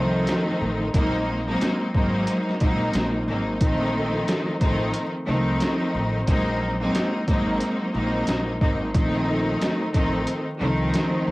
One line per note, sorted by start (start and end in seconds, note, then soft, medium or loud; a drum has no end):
0.00 0.24 C2 loud
0.00 0.88 D#3 loud
0.00 0.88 F3 medium
0.00 0.88 A3 medium
0.00 0.88 C4 medium
0.00 0.88 D#4 loud
0.27 snare loud
0.27 closed hi-hat medium
0.61 0.91 A1 medium
0.94 1.54 A#1 loud
0.94 1.43 F#3 medium
0.94 1.43 G#3 medium
0.94 1.44 A#3 loud
0.94 1.44 C4 medium
0.94 1.44 D#4 loud
0.94 kick loud
0.94 closed hi-hat medium
1.47 1.91 F#3 medium
1.47 1.91 G#3 medium
1.47 1.91 A#3 medium
1.47 1.91 C4 medium
1.47 1.91 D#4 loud
1.61 snare loud
1.61 closed hi-hat medium
1.94 2.24 G#1 medium
1.94 2.57 F#3 loud
1.94 2.57 G#3 medium
1.94 2.57 A#3 medium
1.94 2.57 C4 medium
1.94 2.58 D#4 loud
1.94 kick medium
2.27 closed hi-hat medium
2.49 snare soft
2.60 2.91 A#1 loud
2.60 3.23 F#3 loud
2.60 3.24 G#3 medium
2.60 3.24 A#3 medium
2.60 3.24 C4 medium
2.60 3.24 D#4 loud
2.60 kick loud
2.60 closed hi-hat soft
2.94 3.24 A#1 medium
2.94 snare loud
2.94 closed hi-hat medium
3.28 3.58 G#1 loud
3.28 3.59 F#3 medium
3.28 3.59 G#3 medium
3.28 3.59 A#3 medium
3.28 3.59 C4 medium
3.28 3.60 D#4 medium
3.61 4.21 A#1 loud
3.61 4.55 D#3 loud
3.61 4.55 F3 medium
3.61 4.55 A3 medium
3.61 4.55 C4 medium
3.61 4.55 D#4 loud
3.61 kick loud
3.61 closed hi-hat medium
4.28 snare loud
4.28 closed hi-hat medium
4.61 4.91 A1 medium
4.61 5.10 D#3 loud
4.61 5.10 F3 medium
4.61 5.10 A3 medium
4.61 5.10 C4 medium
4.61 5.10 D#4 loud
4.61 kick medium
4.61 closed hi-hat soft
4.94 closed hi-hat medium
5.27 5.57 C2 medium
5.27 6.21 D#3 loud
5.27 6.21 F3 medium
5.27 6.21 A3 medium
5.27 6.21 C4 medium
5.27 6.21 D#4 loud
5.60 snare loud
5.60 closed hi-hat medium
5.95 6.24 A1 medium
6.28 6.87 A#1 loud
6.28 6.77 F#3 medium
6.28 6.77 G#3 medium
6.28 6.77 A#3 loud
6.28 6.77 C4 medium
6.28 6.77 D#4 loud
6.28 kick loud
6.28 closed hi-hat medium
6.81 7.24 F#3 medium
6.81 7.24 G#3 medium
6.81 7.24 A#3 medium
6.81 7.24 C4 medium
6.81 7.24 D#4 loud
6.95 snare loud
6.95 closed hi-hat medium
7.28 7.58 G#1 medium
7.28 7.91 F#3 loud
7.28 7.91 G#3 medium
7.28 7.91 A#3 medium
7.28 7.91 C4 medium
7.28 7.91 D#4 loud
7.28 kick medium
7.28 closed hi-hat soft
7.60 closed hi-hat medium
7.94 8.24 A#1 loud
7.94 8.57 F#3 loud
7.94 8.57 G#3 medium
7.94 8.57 A#3 medium
7.94 8.57 C4 medium
7.94 8.57 D#4 loud
8.27 8.58 A#1 medium
8.27 snare loud
8.27 closed hi-hat medium
8.61 8.91 G#1 loud
8.61 8.93 F#3 medium
8.61 8.93 G#3 medium
8.61 8.93 A#3 medium
8.61 8.93 C4 medium
8.61 8.93 D#4 medium
8.61 kick medium
8.94 9.54 A#1 loud
8.94 9.88 D#3 loud
8.94 9.88 F3 medium
8.94 9.88 A3 medium
8.94 9.88 C4 medium
8.94 9.89 D#4 loud
8.94 kick loud
8.94 closed hi-hat medium
9.61 snare loud
9.61 closed hi-hat medium
9.94 10.24 A1 medium
9.94 10.43 D#3 loud
9.94 10.43 F3 medium
9.94 10.43 A3 medium
9.94 10.43 C4 medium
9.94 10.43 D#4 loud
9.94 kick medium
9.94 closed hi-hat soft
10.27 closed hi-hat medium
10.60 10.91 C2 loud
10.60 11.31 D#3 loud
10.60 11.31 F3 medium
10.60 11.31 A3 medium
10.60 11.31 C4 medium
10.60 11.31 D#4 loud
10.94 snare loud
10.94 closed hi-hat medium
11.28 11.31 A1 medium